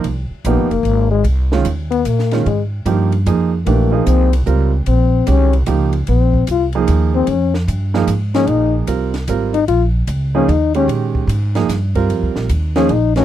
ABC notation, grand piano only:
X:1
M:3/4
L:1/8
Q:"Swing" 1/4=149
K:Bbdor
V:1 name="Grand piano"
z2 [F,B,EG] z3 | z [E,A,DF] z3 [E,A,DF] | z2 [F,B,EG] z [F,B,EA] z | [=E,=A,=DG] [F,B,_E_A]2 z [G,CFB] z |
z2 [E,A,DG] z [F,B,EG] z | z3 [F,B,EA]3 | z3 [F,B,EA] z [F,B,EA]- | [F,B,EA]2 [G,CFB] z [G,CFB] z |
z3 [F,B,EA] z [E,A,DG]- | [E,A,DG]2 z [F,B,EA] z [G,CFB]- | [G,CFB]2 z [F,B,EA] z [=E,=A,_E_G] |]